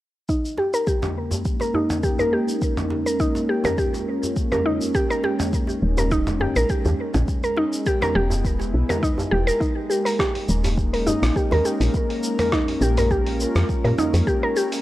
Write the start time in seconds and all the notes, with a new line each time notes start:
0.29 G#3 D#4, kick, cabasa
0.45 A#3, cabasa
0.56 C#4 G4, djembe slap
0.74 A#4, cabasa
0.87 G4, kick, cabasa
1.02 D#4, mid tom, djembe slap, djembe tone, cabasa
1.31 djembe slap, djembe tone, djembe bass, cabasa
1.35 A#4
1.45 kick, cabasa
1.60 A#4, djembe slap, cabasa
1.74 D#4, djembe bass
1.90 mid tom, cabasa
2.03 G4, kick, cabasa
2.19 A#4, djembe bass, cabasa
2.33 G4
2.48 cabasa
2.62 kick, cabasa
2.77 mid tom, cabasa
2.90 djembe slap
3.06 A#4, cabasa
3.20 D#4, kick, cabasa
3.35 djembe slap, djembe tone, cabasa
3.49 G4
3.64 F4 A#4, mid tom, djembe slap, djembe tone, djembe bass, cabasa
3.78 G4, kick, cabasa
3.94 djembe slap, cabasa
4.23 djembe tone, cabasa
4.36 kick, cabasa
4.51 A#4, mid tom, djembe tone, djembe bass, cabasa
4.66 D#4
4.81 djembe tone, cabasa
4.95 G4, kick, cabasa
5.10 A#4, cabasa
5.24 G4, djembe slap
5.31 D#4
5.40 mid tom, cabasa
5.53 kick, cabasa
5.67 djembe slap, djembe tone, cabasa
5.82 D#1
5.97 A#4, djembe slap, djembe tone, djembe bass, cabasa
6.11 D#4, kick, cabasa
6.27 mid tom, djembe slap, cabasa
6.40 G4, djembe bass
6.56 A#1 A#4, cabasa
6.69 G4, kick, cabasa
6.85 D#2, djembe bass, cabasa
7.14 A#1, mid tom, cabasa
7.28 kick, cabasa
7.43 A#4, cabasa
7.55 B3 D#4, djembe slap
7.73 cabasa
7.86 G4, kick, cabasa
8.02 A#4, mid tom, djembe slap, djembe tone, cabasa
8.15 E1 G4
8.20 E4
8.30 B4, djembe slap, djembe tone, djembe bass, cabasa
8.45 kick, cabasa
8.60 djembe slap, cabasa
8.74 B1
8.89 A#4, mid tom, djembe tone, cabasa
9.03 D#4, kick, cabasa
9.18 djembe tone, djembe bass, cabasa
9.31 E1 G4
9.47 A#4, djembe tone, cabasa
9.60 D#4, kick, cabasa
9.79 A#3
9.90 G4, cabasa
10.05 A#4, open hi-hat, cabasa
10.19 D#4 G4, kick, cross-stick, cabasa
10.28 C#4
10.34 open hi-hat, djembe tone
10.49 D#1, cabasa
10.64 A#4, open hi-hat, djembe slap, djembe tone, djembe bass, cabasa
10.78 kick, cabasa
10.93 A#4, open hi-hat
11.07 D#4, djembe slap, djembe bass, cabasa
11.23 A#1, cross-stick, open hi-hat, cabasa
11.36 G4, kick, cabasa
11.51 D#2 A#4, open hi-hat, djembe slap, djembe bass
11.65 G4, djembe slap, cabasa
11.80 A#1, open hi-hat, cabasa
11.94 kick, cabasa
12.10 open hi-hat
12.23 cabasa
12.39 A#4, mid tom, open hi-hat, cabasa
12.52 D#4, kick, cross-stick, cabasa
12.68 open hi-hat, djembe tone
12.81 A#1 G4, cabasa
12.97 F4 A#4, open hi-hat, djembe slap, djembe tone, djembe bass, cabasa
13.11 G4, kick, cabasa
13.27 open hi-hat
13.40 cabasa
13.56 F2, cross-stick, open hi-hat, djembe tone, cabasa
13.69 kick, cabasa
13.84 A#2 A#4, open hi-hat, djembe tone, djembe bass
13.98 D#4, mid tom, djembe slap, cabasa
14.14 F2, open hi-hat, djembe tone, cabasa
14.27 G4, kick, cabasa
14.43 A#4
14.56 G4, cabasa
14.72 open hi-hat, cabasa